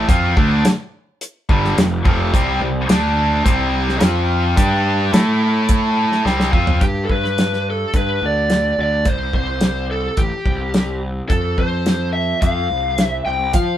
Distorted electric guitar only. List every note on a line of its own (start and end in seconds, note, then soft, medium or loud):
0.08 0.35 F3 medium
0.08 0.36 C4 medium
0.08 0.36 F4 loud
0.37 0.64 D3 medium
0.37 0.64 A3 medium
0.37 0.64 D4 loud
1.49 1.76 G2 medium
1.49 1.76 D3 medium
1.49 1.76 G3 loud
1.78 2.00 F2 medium
1.78 2.00 C3 medium
2.05 2.32 F2 medium
2.05 2.32 C3 loud
2.05 2.32 F3 medium
2.34 2.60 C3 medium
2.34 2.60 G3 medium
2.34 2.61 C4 loud
2.62 2.84 C3 medium
2.62 2.84 G3 medium
2.89 3.44 D3 medium
2.89 3.45 A3 medium
2.89 3.45 D4 loud
3.44 4.01 C3 medium
3.44 4.02 G3 loud
3.44 4.02 C4 medium
4.01 4.56 F3 medium
4.01 4.56 C4 loud
4.01 4.56 F4 medium
4.57 5.12 G3 medium
4.57 5.12 D4 medium
4.57 5.12 G4 loud
5.12 6.24 A3 medium
5.12 6.24 E4 medium
5.12 6.24 A4 medium
6.25 6.52 C3 medium
6.25 6.52 G3 loud
6.25 6.51 C4 loud
6.52 6.80 F3 medium
6.52 6.80 C4 loud
6.52 6.80 F4 loud